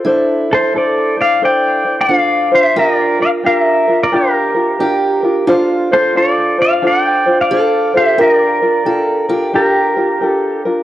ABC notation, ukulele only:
X:1
M:4/4
L:1/8
Q:"Swing" 1/4=89
K:Dm
V:1 name="Ukulele"
[DAc] [Dc] [DAc] [Dc] [DAc] [Dc] [DFAc] [DFc] | [DFGB] [DFB] [DFGB] [DFB] [DFGB] [DFB] [DFGB] [DFB] | [DFAc] [DFc] [DFAc] [DFc] [DFAc] [DFc] [DFAc] [DFc] | [DFGB] [DFB] [DFG] [DFB] [DFGB] [DFB] [DFGB] [DFB] |]